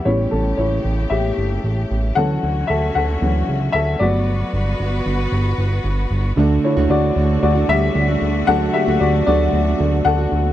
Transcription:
<<
  \new Staff \with { instrumentName = "Upright piano" } { \time 4/4 \key d \major \tempo 4 = 114 <e' cis''>8 <cis' a'>8 <e' cis''>4 <g' e''>4 r4 | <a' fis''>4 <a' e''>8 <a' fis''>4 r8 <a' e''>8 <fis' d''>8~ | <fis' d''>2. r4 | r8 <e' cis''>8 <fis' d''>4 <fis' d''>8 <g e''>4. |
<a' fis''>8 <g' e''>8 <fis' d''>8 <fis' d''>4. <a' fis''>4 | }
  \new Staff \with { instrumentName = "Upright piano" } { \time 4/4 \key d \major <g b cis'>4. r2 r8 | <e fis cis'>4. r8 <e fis cis'>8 r4 <fis a b>8~ | <fis a b>2.~ <fis a b>8 r8 | <d a d'>1 |
<fis a d'>8 r4 <fis a d'>8 r2 | }
  \new Staff \with { instrumentName = "Steel-string acoustic guitar" } { \time 4/4 \key d \major r1 | r1 | r1 | <d a d' fis'>8. <d a d' fis'>8. <d a d' fis'>8. <a d' fis'>4 <a d' fis'>8. |
<d a d' fis'>8. <d a d' fis'>8. <d a d' fis'>8. <a d' fis'>4 <a d' fis'>8. | }
  \new Staff \with { instrumentName = "String section" } { \time 4/4 \key d \major <cis a g'>1 | <d cis' fis'>2.~ <d cis' fis'>8 <b fis' b'>8~ | <b fis' b'>1 | <d a fis'>1~ |
<d a fis'>1 | }
  \new Staff \with { instrumentName = "Analog synth bass" } { \clef bass \time 4/4 \key d \major a,,8 a,,8 a,,8 a,,8 a,,8 g,,8 a,,8 a,,8 | d,8 d,8 d,8 d,8 d,8 cis,8 d,8 g,,8~ | g,,8 g,,8 g,,8 g,,8 g,,8 g,,8 g,,8 g,,8 | d,8 r16 d,16 d,8 d,8 d,8 d,8 d,8 d,8 |
d,8 r16 d,16 d,8 d,8 d,8 d,8 d,8 d,8 | }
>>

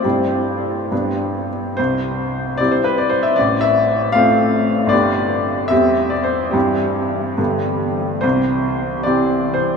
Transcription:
<<
  \new Staff \with { instrumentName = "Grand piano" } { \time 6/8 \key c \major \tempo 4. = 74 g'2~ g'8 r8 | c''4. d''16 c''16 b'16 d''16 c''16 e''16 | d''8 e''4 f''4. | d''4. e''8. d''16 c''8 |
g'4. r4. | c''4. d''4 c''8 | }
  \new Staff \with { instrumentName = "Grand piano" } { \time 6/8 \key c \major <g, g c' e'>4. <g, g b d'>4. | c,4. <g c' e'>4. | a,,4. <a c' f'>4. | <g,, b d' g'>4. <e, g c' g'>4. |
<g, e c'>4. <g, d b g'>4. | c,4. <e c' g'>4. | }
>>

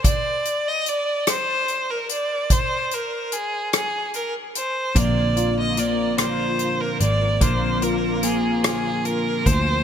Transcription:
<<
  \new Staff \with { instrumentName = "Violin" } { \time 6/8 \key bes \mixolydian \tempo 4. = 49 d''8. ees''16 d''8 c''8. bes'16 d''8 | c''8 bes'8 aes'8 aes'8 bes'8 c''8 | d''8. ees''16 d''8 c''8. bes'16 d''8 | c''8 bes'8 aes'8 aes'8 bes'8 c''8 | }
  \new Staff \with { instrumentName = "Grand piano" } { \time 6/8 \key bes \mixolydian r2. | r2. | bes8 f'8 bes8 f'4. | bes8 f'8 bes8 f'4. | }
  \new Staff \with { instrumentName = "Clean electric guitar" } { \time 6/8 \key bes \mixolydian r2. | r2. | <bes, d f bes c' f'>4 <f bes c' f'>8 <bes, d f bes c' f'>4 <f bes c' f'>8 | <bes, d f bes c' f'>4 <f bes c' f'>8 <bes, d f bes c' f'>4 <f bes c' f'>8 | }
  \new Staff \with { instrumentName = "Picked electric bass" } { \clef bass \time 6/8 \key bes \mixolydian r2. | r2. | bes,,2~ bes,,8 aes,,8 | bes,,2~ bes,,8 d,8 | }
  \new DrumStaff \with { instrumentName = "Drums" } \drummode { \time 6/8 <hh bd>8 hh8 hh8 <hh ss>8 hh8 hh8 | <hh bd>8 hh8 hh8 <hh ss>8 hh8 hh8 | <hh bd>8 hh8 hh8 <hh ss>8 hh8 hh8 | <hh bd>8 hh8 hh8 <hh ss>8 hh8 <hh bd>8 | }
>>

